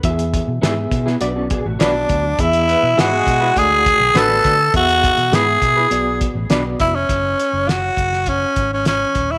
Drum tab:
HH |xxx-x-x-x-x-x-x-|xxx-x-x-x-x-x-x-|xxxxx-x-x-x-x-x-|x-x-x-x-x-x-x-x-|
SD |----o--o----o---|----o-------o-o-|----o-------o---|----o--o----o---|
BD |o-o---o---o---o-|o-----o-o-o---o-|o-o---o---o---o-|o-----o-o-o---o-|